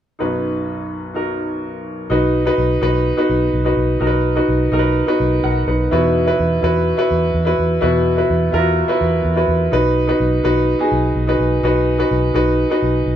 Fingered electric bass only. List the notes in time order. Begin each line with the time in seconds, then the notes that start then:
2.10 B1
2.58 B1
2.82 B1
3.29 B1
3.54 B1
3.77 B1
4.00 B1
4.48 B1
4.72 B1
5.20 B1
5.44 B1
5.67 B1
5.92 E2
6.39 E2
6.63 E2
7.11 E2
7.34 E2
7.59 E2
7.83 E2
8.30 E2
8.53 E2
9.01 E2
9.25 E2
9.48 E2
9.72 B1
10.20 B1
10.44 B1
10.92 B1
11.15 B1
11.39 B1
11.63 B1
12.11 B1
12.34 B1
12.82 B1
13.06 B1